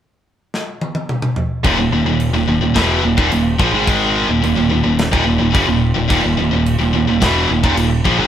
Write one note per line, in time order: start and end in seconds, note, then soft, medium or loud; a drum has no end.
0.54 snare medium
0.81 high tom medium
0.95 high tom medium
1.09 mid tom medium
1.22 mid tom loud
1.36 floor tom medium
1.64 1.77 D#1 medium
1.64 1.77 D#2 medium
1.64 1.78 A#2 loud
1.64 kick loud
1.64 crash medium
1.77 1.90 D#1 medium
1.77 1.91 D#2 medium
1.77 1.92 A#2 medium
1.91 2.04 D#1 medium
1.91 2.05 D#2 medium
1.91 2.06 A#2 medium
2.05 2.31 D#1 medium
2.05 2.28 D#2 medium
2.05 2.29 A#2 medium
2.20 crash medium
2.31 2.46 D#1 medium
2.31 2.46 D#2 medium
2.31 2.47 A#2 medium
2.47 2.60 D#1 medium
2.47 2.60 D#2 medium
2.47 2.60 A#2 medium
2.61 2.74 D#1 medium
2.61 2.74 D#2 medium
2.61 2.75 A#2 medium
2.74 3.01 E1 medium
2.74 3.02 E2 loud
2.74 3.03 B2 loud
2.74 3.03 E3 loud
2.74 kick medium
2.74 snare loud
2.74 crash medium
3.03 3.16 D#1 medium
3.03 3.16 D#2 medium
3.03 3.17 A#2 medium
3.17 3.31 D#1 medium
3.17 3.30 D#2 medium
3.17 3.30 A#2 medium
3.17 kick loud
3.31 3.58 D#1 medium
3.31 3.54 D#2 medium
3.31 3.54 A#2 medium
3.31 crash medium
3.59 3.71 A#1 medium
3.59 3.72 A#2 medium
3.59 3.72 F3 medium
3.59 kick loud
3.72 4.24 G#1 loud
3.72 4.28 G#2 loud
3.72 4.28 D#3 medium
3.72 4.28 G#3 medium
3.87 kick loud
3.87 crash medium
4.28 4.42 D#1 medium
4.28 4.41 D#2 medium
4.28 4.41 A#2 medium
4.42 4.56 D#1 medium
4.42 4.54 D#2 medium
4.42 4.55 A#2 medium
4.42 crash medium
4.56 4.69 D#1 medium
4.56 4.68 D#2 medium
4.56 4.69 A#2 medium
4.69 4.83 D#1 medium
4.69 4.82 D#2 medium
4.69 4.83 A#2 medium
4.83 5.10 D#1 medium
4.83 5.06 D#2 medium
4.83 5.07 A#2 medium
4.99 snare medium
4.99 crash medium
5.12 5.25 D#1 loud
5.12 5.24 D#2 loud
5.12 5.24 A#2 medium
5.12 kick loud
5.25 5.39 D#1 medium
5.25 5.37 D#2 medium
5.25 5.38 A#2 medium
5.38 5.53 D#1 medium
5.38 5.52 D#2 medium
5.38 5.53 A#2 medium
5.52 5.66 F#1 medium
5.52 5.66 F#2 medium
5.52 5.66 C#3 loud
5.52 kick loud
5.52 crash medium
5.67 5.93 D#1 medium
5.67 5.90 D#2 medium
5.67 5.90 A#2 medium
5.94 6.09 D#1 medium
5.94 6.07 D#2 medium
5.94 6.08 A#2 medium
6.08 6.23 D#1 medium
6.08 6.21 D#2 loud
6.08 6.21 A#2 loud
6.08 kick loud
6.08 crash medium
6.22 6.36 D#1 medium
6.22 6.36 D#2 medium
6.22 6.36 A#2 medium
6.37 6.50 D#1 medium
6.37 6.50 D#2 medium
6.37 6.50 A#2 medium
6.51 6.77 D#1 medium
6.51 6.74 D#2 medium
6.51 6.74 A#2 medium
6.66 crash medium
6.79 6.92 D#1 medium
6.79 6.92 D#2 medium
6.79 6.92 A#2 medium
6.93 7.06 D#1 medium
6.93 7.06 D#2 medium
6.93 7.06 A#2 medium
7.07 7.21 D#1 medium
7.07 7.20 D#2 medium
7.07 7.21 A#2 medium
7.21 7.48 E1 medium
7.21 7.48 E2 loud
7.21 7.49 B2 loud
7.21 7.49 E3 loud
7.21 kick loud
7.21 snare loud
7.21 crash medium
7.49 7.62 D#1 medium
7.49 7.62 D#2 medium
7.49 7.63 A#2 medium
7.63 7.75 D#1 medium
7.63 7.76 D#2 loud
7.63 7.76 A#2 loud
7.63 kick loud
7.76 8.02 D#1 medium
7.76 7.99 D#2 medium
7.76 8.00 A#2 medium
7.76 crash medium
8.04 8.17 A#1 medium
8.04 8.18 A#2 medium
8.04 8.19 F3 medium
8.04 kick loud
8.18 8.27 G#1 loud
8.18 8.27 G#2 medium
8.18 8.27 D#3 medium
8.18 8.27 G#3 loud